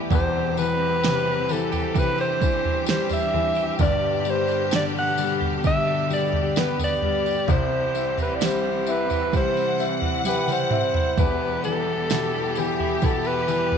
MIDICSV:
0, 0, Header, 1, 6, 480
1, 0, Start_track
1, 0, Tempo, 923077
1, 53, Time_signature, 4, 2, 24, 8
1, 7165, End_track
2, 0, Start_track
2, 0, Title_t, "Alto saxophone"
2, 0, Program_c, 0, 65
2, 76, Note_on_c, 0, 72, 98
2, 306, Note_on_c, 0, 71, 106
2, 314, Note_off_c, 0, 72, 0
2, 791, Note_on_c, 0, 69, 90
2, 798, Note_off_c, 0, 71, 0
2, 1033, Note_on_c, 0, 71, 109
2, 1041, Note_off_c, 0, 69, 0
2, 1143, Note_off_c, 0, 71, 0
2, 1149, Note_on_c, 0, 72, 110
2, 1480, Note_off_c, 0, 72, 0
2, 1510, Note_on_c, 0, 72, 80
2, 1613, Note_off_c, 0, 72, 0
2, 1630, Note_on_c, 0, 76, 91
2, 1961, Note_off_c, 0, 76, 0
2, 1989, Note_on_c, 0, 74, 108
2, 2238, Note_on_c, 0, 72, 98
2, 2246, Note_off_c, 0, 74, 0
2, 2465, Note_off_c, 0, 72, 0
2, 2473, Note_on_c, 0, 74, 98
2, 2522, Note_off_c, 0, 74, 0
2, 2594, Note_on_c, 0, 78, 107
2, 2788, Note_off_c, 0, 78, 0
2, 2948, Note_on_c, 0, 76, 115
2, 3164, Note_off_c, 0, 76, 0
2, 3190, Note_on_c, 0, 74, 93
2, 3431, Note_on_c, 0, 71, 88
2, 3439, Note_off_c, 0, 74, 0
2, 3542, Note_off_c, 0, 71, 0
2, 3557, Note_on_c, 0, 74, 96
2, 3909, Note_on_c, 0, 72, 101
2, 3917, Note_off_c, 0, 74, 0
2, 4261, Note_off_c, 0, 72, 0
2, 4277, Note_on_c, 0, 71, 86
2, 4345, Note_on_c, 0, 74, 71
2, 4353, Note_off_c, 0, 71, 0
2, 4395, Note_on_c, 0, 72, 102
2, 4403, Note_off_c, 0, 74, 0
2, 4631, Note_on_c, 0, 71, 87
2, 4639, Note_off_c, 0, 72, 0
2, 4862, Note_off_c, 0, 71, 0
2, 4872, Note_on_c, 0, 72, 103
2, 5181, Note_off_c, 0, 72, 0
2, 5350, Note_on_c, 0, 71, 78
2, 5472, Note_on_c, 0, 72, 89
2, 5479, Note_off_c, 0, 71, 0
2, 5822, Note_on_c, 0, 71, 99
2, 5829, Note_off_c, 0, 72, 0
2, 6054, Note_off_c, 0, 71, 0
2, 6057, Note_on_c, 0, 69, 93
2, 6544, Note_on_c, 0, 67, 79
2, 6552, Note_off_c, 0, 69, 0
2, 6788, Note_on_c, 0, 69, 96
2, 6796, Note_off_c, 0, 67, 0
2, 6900, Note_on_c, 0, 71, 108
2, 6908, Note_off_c, 0, 69, 0
2, 7165, Note_off_c, 0, 71, 0
2, 7165, End_track
3, 0, Start_track
3, 0, Title_t, "Clean electric guitar"
3, 0, Program_c, 1, 27
3, 0, Note_on_c, 1, 40, 74
3, 0, Note_on_c, 1, 55, 64
3, 0, Note_on_c, 1, 59, 66
3, 0, Note_on_c, 1, 64, 65
3, 52, Note_on_c, 1, 52, 89
3, 54, Note_off_c, 1, 64, 0
3, 56, Note_on_c, 1, 67, 63
3, 100, Note_off_c, 1, 40, 0
3, 102, Note_off_c, 1, 59, 0
3, 171, Note_on_c, 1, 60, 52
3, 293, Note_off_c, 1, 55, 0
3, 295, Note_on_c, 1, 55, 50
3, 408, Note_off_c, 1, 60, 0
3, 415, Note_on_c, 1, 60, 65
3, 536, Note_off_c, 1, 67, 0
3, 538, Note_on_c, 1, 67, 58
3, 653, Note_off_c, 1, 55, 0
3, 655, Note_on_c, 1, 55, 50
3, 770, Note_off_c, 1, 60, 0
3, 777, Note_on_c, 1, 60, 55
3, 892, Note_off_c, 1, 67, 0
3, 894, Note_on_c, 1, 67, 70
3, 1003, Note_off_c, 1, 52, 0
3, 1009, Note_off_c, 1, 67, 0
3, 1009, Note_on_c, 1, 52, 77
3, 1011, Note_on_c, 1, 67, 69
3, 1123, Note_off_c, 1, 60, 0
3, 1129, Note_on_c, 1, 60, 62
3, 1249, Note_off_c, 1, 55, 0
3, 1251, Note_on_c, 1, 55, 54
3, 1368, Note_off_c, 1, 60, 0
3, 1374, Note_on_c, 1, 60, 67
3, 1489, Note_off_c, 1, 67, 0
3, 1491, Note_on_c, 1, 67, 56
3, 1612, Note_off_c, 1, 55, 0
3, 1614, Note_on_c, 1, 55, 59
3, 1728, Note_off_c, 1, 60, 0
3, 1734, Note_on_c, 1, 60, 65
3, 1852, Note_off_c, 1, 67, 0
3, 1854, Note_on_c, 1, 67, 70
3, 1972, Note_on_c, 1, 43, 88
3, 1973, Note_off_c, 1, 67, 0
3, 1975, Note_on_c, 1, 67, 73
3, 2019, Note_off_c, 1, 52, 0
3, 2021, Note_off_c, 1, 60, 0
3, 2093, Note_on_c, 1, 62, 59
3, 2324, Note_off_c, 1, 62, 0
3, 2330, Note_on_c, 1, 62, 62
3, 2448, Note_off_c, 1, 67, 0
3, 2450, Note_on_c, 1, 67, 62
3, 2570, Note_off_c, 1, 55, 0
3, 2572, Note_on_c, 1, 59, 57
3, 2687, Note_off_c, 1, 62, 0
3, 2693, Note_on_c, 1, 62, 61
3, 2809, Note_off_c, 1, 67, 0
3, 2811, Note_on_c, 1, 67, 59
3, 2927, Note_off_c, 1, 43, 0
3, 2932, Note_on_c, 1, 43, 78
3, 2935, Note_off_c, 1, 67, 0
3, 2937, Note_on_c, 1, 67, 58
3, 3047, Note_off_c, 1, 62, 0
3, 3054, Note_on_c, 1, 62, 61
3, 3171, Note_off_c, 1, 59, 0
3, 3177, Note_on_c, 1, 59, 60
3, 3292, Note_off_c, 1, 62, 0
3, 3298, Note_on_c, 1, 62, 53
3, 3414, Note_off_c, 1, 67, 0
3, 3416, Note_on_c, 1, 67, 58
3, 3532, Note_off_c, 1, 59, 0
3, 3538, Note_on_c, 1, 59, 63
3, 3649, Note_off_c, 1, 62, 0
3, 3655, Note_on_c, 1, 62, 59
3, 3777, Note_off_c, 1, 67, 0
3, 3779, Note_on_c, 1, 67, 60
3, 3896, Note_off_c, 1, 67, 0
3, 3896, Note_on_c, 1, 48, 80
3, 3898, Note_on_c, 1, 64, 83
3, 3941, Note_off_c, 1, 43, 0
3, 3942, Note_off_c, 1, 62, 0
3, 3943, Note_off_c, 1, 59, 0
3, 4014, Note_on_c, 1, 60, 54
3, 4136, Note_on_c, 1, 55, 59
3, 4246, Note_off_c, 1, 60, 0
3, 4252, Note_on_c, 1, 60, 56
3, 4368, Note_off_c, 1, 64, 0
3, 4370, Note_on_c, 1, 64, 64
3, 4487, Note_off_c, 1, 55, 0
3, 4489, Note_on_c, 1, 55, 60
3, 4601, Note_off_c, 1, 60, 0
3, 4608, Note_on_c, 1, 60, 56
3, 4729, Note_off_c, 1, 64, 0
3, 4731, Note_on_c, 1, 64, 58
3, 4846, Note_off_c, 1, 48, 0
3, 4852, Note_on_c, 1, 48, 77
3, 4854, Note_off_c, 1, 64, 0
3, 4856, Note_on_c, 1, 64, 66
3, 4970, Note_off_c, 1, 60, 0
3, 4977, Note_on_c, 1, 60, 55
3, 5093, Note_off_c, 1, 55, 0
3, 5095, Note_on_c, 1, 55, 58
3, 5206, Note_off_c, 1, 60, 0
3, 5212, Note_on_c, 1, 60, 55
3, 5333, Note_off_c, 1, 64, 0
3, 5335, Note_on_c, 1, 64, 57
3, 5450, Note_off_c, 1, 55, 0
3, 5452, Note_on_c, 1, 55, 65
3, 5567, Note_off_c, 1, 60, 0
3, 5573, Note_on_c, 1, 60, 59
3, 5694, Note_off_c, 1, 64, 0
3, 5696, Note_on_c, 1, 64, 51
3, 5816, Note_on_c, 1, 40, 85
3, 5818, Note_off_c, 1, 64, 0
3, 5820, Note_on_c, 1, 64, 72
3, 5860, Note_off_c, 1, 48, 0
3, 5861, Note_off_c, 1, 60, 0
3, 5939, Note_on_c, 1, 59, 55
3, 6057, Note_off_c, 1, 55, 0
3, 6059, Note_on_c, 1, 55, 53
3, 6173, Note_off_c, 1, 59, 0
3, 6180, Note_on_c, 1, 59, 56
3, 6294, Note_off_c, 1, 64, 0
3, 6296, Note_on_c, 1, 64, 64
3, 6416, Note_off_c, 1, 55, 0
3, 6418, Note_on_c, 1, 55, 55
3, 6533, Note_off_c, 1, 59, 0
3, 6540, Note_on_c, 1, 59, 57
3, 6655, Note_off_c, 1, 64, 0
3, 6657, Note_on_c, 1, 64, 63
3, 6769, Note_off_c, 1, 40, 0
3, 6776, Note_on_c, 1, 40, 74
3, 6777, Note_off_c, 1, 64, 0
3, 6779, Note_on_c, 1, 64, 66
3, 6894, Note_off_c, 1, 59, 0
3, 6900, Note_on_c, 1, 59, 59
3, 7020, Note_off_c, 1, 55, 0
3, 7022, Note_on_c, 1, 55, 62
3, 7135, Note_off_c, 1, 59, 0
3, 7141, Note_on_c, 1, 59, 55
3, 7165, Note_off_c, 1, 40, 0
3, 7165, Note_off_c, 1, 55, 0
3, 7165, Note_off_c, 1, 59, 0
3, 7165, Note_off_c, 1, 64, 0
3, 7165, End_track
4, 0, Start_track
4, 0, Title_t, "String section"
4, 0, Program_c, 2, 48
4, 0, Note_on_c, 2, 67, 70
4, 52, Note_on_c, 2, 60, 58
4, 53, Note_on_c, 2, 52, 61
4, 1003, Note_off_c, 2, 60, 0
4, 1012, Note_on_c, 2, 62, 66
4, 1954, Note_off_c, 2, 52, 0
4, 1963, Note_off_c, 2, 62, 0
4, 1973, Note_on_c, 2, 50, 68
4, 1974, Note_on_c, 2, 47, 58
4, 3874, Note_off_c, 2, 47, 0
4, 3874, Note_off_c, 2, 50, 0
4, 3890, Note_on_c, 2, 52, 69
4, 3897, Note_on_c, 2, 60, 58
4, 4833, Note_off_c, 2, 67, 0
4, 4859, Note_on_c, 2, 78, 81
4, 5792, Note_off_c, 2, 52, 0
4, 5796, Note_off_c, 2, 60, 0
4, 5806, Note_off_c, 2, 78, 0
4, 5807, Note_on_c, 2, 59, 64
4, 5809, Note_on_c, 2, 52, 66
4, 5812, Note_on_c, 2, 67, 80
4, 7165, Note_off_c, 2, 52, 0
4, 7165, Note_off_c, 2, 59, 0
4, 7165, Note_off_c, 2, 67, 0
4, 7165, End_track
5, 0, Start_track
5, 0, Title_t, "Grand piano"
5, 0, Program_c, 3, 0
5, 0, Control_c, 3, 64, 127
5, 0, Note_on_c, 3, 47, 53
5, 0, Note_on_c, 3, 52, 52
5, 0, Note_on_c, 3, 55, 54
5, 60, Control_c, 3, 64, 0
5, 60, Note_on_c, 3, 28, 68
5, 63, Note_off_c, 3, 47, 0
5, 63, Note_off_c, 3, 55, 0
5, 63, Note_on_c, 3, 40, 68
5, 64, Note_off_c, 3, 52, 0
5, 160, Control_c, 3, 64, 127
5, 302, Note_on_c, 3, 52, 45
5, 545, Note_on_c, 3, 48, 56
5, 773, Note_off_c, 3, 52, 0
5, 781, Note_on_c, 3, 52, 50
5, 1009, Note_off_c, 3, 48, 0
5, 1017, Note_on_c, 3, 48, 53
5, 1253, Note_off_c, 3, 52, 0
5, 1261, Note_on_c, 3, 52, 49
5, 1500, Note_on_c, 3, 55, 53
5, 1730, Note_off_c, 3, 52, 0
5, 1738, Note_on_c, 3, 52, 54
5, 1954, Note_off_c, 3, 48, 0
5, 1955, Note_off_c, 3, 28, 0
5, 1957, Note_off_c, 3, 40, 0
5, 1962, Note_off_c, 3, 55, 0
5, 1968, Note_off_c, 3, 52, 0
5, 1978, Note_on_c, 3, 43, 63
5, 1979, Control_c, 3, 64, 0
5, 1979, Note_on_c, 3, 31, 64
5, 2060, Control_c, 3, 64, 127
5, 2216, Note_on_c, 3, 55, 55
5, 2453, Note_on_c, 3, 50, 54
5, 2688, Note_off_c, 3, 55, 0
5, 2696, Note_on_c, 3, 55, 61
5, 2928, Note_off_c, 3, 50, 0
5, 2936, Note_on_c, 3, 50, 54
5, 3165, Note_off_c, 3, 55, 0
5, 3172, Note_on_c, 3, 55, 53
5, 3416, Note_on_c, 3, 59, 56
5, 3644, Note_off_c, 3, 55, 0
5, 3651, Note_on_c, 3, 55, 60
5, 3873, Note_off_c, 3, 50, 0
5, 3874, Note_off_c, 3, 43, 0
5, 3875, Note_off_c, 3, 31, 0
5, 3880, Note_off_c, 3, 59, 0
5, 3885, Note_off_c, 3, 55, 0
5, 3888, Note_on_c, 3, 48, 69
5, 3891, Note_on_c, 3, 36, 68
5, 3899, Control_c, 3, 64, 0
5, 3986, Control_c, 3, 64, 127
5, 4131, Note_on_c, 3, 64, 46
5, 4377, Note_on_c, 3, 55, 52
5, 4611, Note_off_c, 3, 64, 0
5, 4618, Note_on_c, 3, 64, 55
5, 4846, Note_off_c, 3, 55, 0
5, 4853, Note_on_c, 3, 55, 58
5, 5085, Note_off_c, 3, 64, 0
5, 5092, Note_on_c, 3, 64, 55
5, 5336, Note_on_c, 3, 67, 53
5, 5563, Note_off_c, 3, 64, 0
5, 5571, Note_on_c, 3, 64, 51
5, 5790, Note_off_c, 3, 48, 0
5, 5791, Note_off_c, 3, 36, 0
5, 5792, Note_off_c, 3, 55, 0
5, 5800, Note_off_c, 3, 67, 0
5, 5804, Note_off_c, 3, 64, 0
5, 5819, Control_c, 3, 64, 0
5, 5821, Note_on_c, 3, 28, 57
5, 5821, Note_on_c, 3, 40, 59
5, 5905, Control_c, 3, 64, 127
5, 6059, Note_on_c, 3, 52, 43
5, 6300, Note_on_c, 3, 47, 49
5, 6534, Note_off_c, 3, 52, 0
5, 6541, Note_on_c, 3, 52, 54
5, 6771, Note_off_c, 3, 47, 0
5, 6779, Note_on_c, 3, 47, 62
5, 7000, Note_off_c, 3, 52, 0
5, 7008, Note_on_c, 3, 52, 55
5, 7165, Note_off_c, 3, 28, 0
5, 7165, Note_off_c, 3, 40, 0
5, 7165, Note_off_c, 3, 47, 0
5, 7165, Note_off_c, 3, 52, 0
5, 7165, End_track
6, 0, Start_track
6, 0, Title_t, "Drums"
6, 54, Note_on_c, 9, 43, 107
6, 56, Note_on_c, 9, 36, 97
6, 58, Note_on_c, 9, 54, 44
6, 106, Note_off_c, 9, 43, 0
6, 108, Note_off_c, 9, 36, 0
6, 110, Note_off_c, 9, 54, 0
6, 297, Note_on_c, 9, 54, 48
6, 349, Note_off_c, 9, 54, 0
6, 538, Note_on_c, 9, 54, 70
6, 543, Note_on_c, 9, 38, 121
6, 590, Note_off_c, 9, 54, 0
6, 595, Note_off_c, 9, 38, 0
6, 775, Note_on_c, 9, 54, 55
6, 827, Note_off_c, 9, 54, 0
6, 896, Note_on_c, 9, 54, 32
6, 898, Note_on_c, 9, 43, 61
6, 948, Note_off_c, 9, 54, 0
6, 950, Note_off_c, 9, 43, 0
6, 1016, Note_on_c, 9, 36, 82
6, 1016, Note_on_c, 9, 54, 40
6, 1068, Note_off_c, 9, 36, 0
6, 1068, Note_off_c, 9, 54, 0
6, 1134, Note_on_c, 9, 54, 27
6, 1186, Note_off_c, 9, 54, 0
6, 1257, Note_on_c, 9, 36, 91
6, 1257, Note_on_c, 9, 54, 46
6, 1309, Note_off_c, 9, 36, 0
6, 1309, Note_off_c, 9, 54, 0
6, 1378, Note_on_c, 9, 43, 71
6, 1430, Note_off_c, 9, 43, 0
6, 1490, Note_on_c, 9, 54, 84
6, 1503, Note_on_c, 9, 38, 120
6, 1542, Note_off_c, 9, 54, 0
6, 1555, Note_off_c, 9, 38, 0
6, 1609, Note_on_c, 9, 54, 49
6, 1614, Note_on_c, 9, 43, 67
6, 1661, Note_off_c, 9, 54, 0
6, 1666, Note_off_c, 9, 43, 0
6, 1736, Note_on_c, 9, 43, 60
6, 1788, Note_off_c, 9, 43, 0
6, 1847, Note_on_c, 9, 54, 31
6, 1899, Note_off_c, 9, 54, 0
6, 1970, Note_on_c, 9, 43, 95
6, 1970, Note_on_c, 9, 54, 47
6, 1973, Note_on_c, 9, 36, 104
6, 2022, Note_off_c, 9, 43, 0
6, 2022, Note_off_c, 9, 54, 0
6, 2025, Note_off_c, 9, 36, 0
6, 2210, Note_on_c, 9, 54, 50
6, 2262, Note_off_c, 9, 54, 0
6, 2329, Note_on_c, 9, 54, 23
6, 2381, Note_off_c, 9, 54, 0
6, 2451, Note_on_c, 9, 54, 78
6, 2459, Note_on_c, 9, 38, 125
6, 2503, Note_off_c, 9, 54, 0
6, 2511, Note_off_c, 9, 38, 0
6, 2691, Note_on_c, 9, 54, 54
6, 2743, Note_off_c, 9, 54, 0
6, 2814, Note_on_c, 9, 43, 62
6, 2866, Note_off_c, 9, 43, 0
6, 2931, Note_on_c, 9, 54, 42
6, 2933, Note_on_c, 9, 36, 88
6, 2983, Note_off_c, 9, 54, 0
6, 2985, Note_off_c, 9, 36, 0
6, 3173, Note_on_c, 9, 54, 47
6, 3225, Note_off_c, 9, 54, 0
6, 3290, Note_on_c, 9, 43, 71
6, 3342, Note_off_c, 9, 43, 0
6, 3412, Note_on_c, 9, 54, 72
6, 3418, Note_on_c, 9, 38, 111
6, 3464, Note_off_c, 9, 54, 0
6, 3470, Note_off_c, 9, 38, 0
6, 3532, Note_on_c, 9, 43, 70
6, 3533, Note_on_c, 9, 54, 54
6, 3584, Note_off_c, 9, 43, 0
6, 3585, Note_off_c, 9, 54, 0
6, 3652, Note_on_c, 9, 43, 69
6, 3704, Note_off_c, 9, 43, 0
6, 3775, Note_on_c, 9, 54, 31
6, 3827, Note_off_c, 9, 54, 0
6, 3889, Note_on_c, 9, 43, 98
6, 3891, Note_on_c, 9, 36, 100
6, 3894, Note_on_c, 9, 54, 47
6, 3941, Note_off_c, 9, 43, 0
6, 3943, Note_off_c, 9, 36, 0
6, 3946, Note_off_c, 9, 54, 0
6, 4133, Note_on_c, 9, 54, 46
6, 4185, Note_off_c, 9, 54, 0
6, 4251, Note_on_c, 9, 43, 69
6, 4254, Note_on_c, 9, 54, 23
6, 4303, Note_off_c, 9, 43, 0
6, 4306, Note_off_c, 9, 54, 0
6, 4374, Note_on_c, 9, 54, 79
6, 4378, Note_on_c, 9, 38, 126
6, 4426, Note_off_c, 9, 54, 0
6, 4430, Note_off_c, 9, 38, 0
6, 4609, Note_on_c, 9, 54, 46
6, 4661, Note_off_c, 9, 54, 0
6, 4731, Note_on_c, 9, 54, 31
6, 4735, Note_on_c, 9, 43, 62
6, 4783, Note_off_c, 9, 54, 0
6, 4787, Note_off_c, 9, 43, 0
6, 4852, Note_on_c, 9, 36, 84
6, 4853, Note_on_c, 9, 54, 45
6, 4904, Note_off_c, 9, 36, 0
6, 4905, Note_off_c, 9, 54, 0
6, 4975, Note_on_c, 9, 54, 29
6, 5027, Note_off_c, 9, 54, 0
6, 5096, Note_on_c, 9, 54, 42
6, 5148, Note_off_c, 9, 54, 0
6, 5209, Note_on_c, 9, 43, 74
6, 5261, Note_off_c, 9, 43, 0
6, 5329, Note_on_c, 9, 48, 63
6, 5331, Note_on_c, 9, 54, 86
6, 5381, Note_off_c, 9, 48, 0
6, 5383, Note_off_c, 9, 54, 0
6, 5448, Note_on_c, 9, 47, 63
6, 5449, Note_on_c, 9, 54, 49
6, 5500, Note_off_c, 9, 47, 0
6, 5501, Note_off_c, 9, 54, 0
6, 5567, Note_on_c, 9, 45, 94
6, 5619, Note_off_c, 9, 45, 0
6, 5690, Note_on_c, 9, 43, 94
6, 5742, Note_off_c, 9, 43, 0
6, 5811, Note_on_c, 9, 43, 97
6, 5812, Note_on_c, 9, 36, 107
6, 5813, Note_on_c, 9, 54, 44
6, 5863, Note_off_c, 9, 43, 0
6, 5864, Note_off_c, 9, 36, 0
6, 5865, Note_off_c, 9, 54, 0
6, 6051, Note_on_c, 9, 54, 49
6, 6103, Note_off_c, 9, 54, 0
6, 6290, Note_on_c, 9, 54, 77
6, 6296, Note_on_c, 9, 38, 123
6, 6342, Note_off_c, 9, 54, 0
6, 6348, Note_off_c, 9, 38, 0
6, 6528, Note_on_c, 9, 54, 47
6, 6580, Note_off_c, 9, 54, 0
6, 6654, Note_on_c, 9, 43, 53
6, 6706, Note_off_c, 9, 43, 0
6, 6769, Note_on_c, 9, 54, 45
6, 6772, Note_on_c, 9, 36, 92
6, 6821, Note_off_c, 9, 54, 0
6, 6824, Note_off_c, 9, 36, 0
6, 6888, Note_on_c, 9, 54, 29
6, 6940, Note_off_c, 9, 54, 0
6, 7009, Note_on_c, 9, 54, 42
6, 7061, Note_off_c, 9, 54, 0
6, 7134, Note_on_c, 9, 43, 73
6, 7165, Note_off_c, 9, 43, 0
6, 7165, End_track
0, 0, End_of_file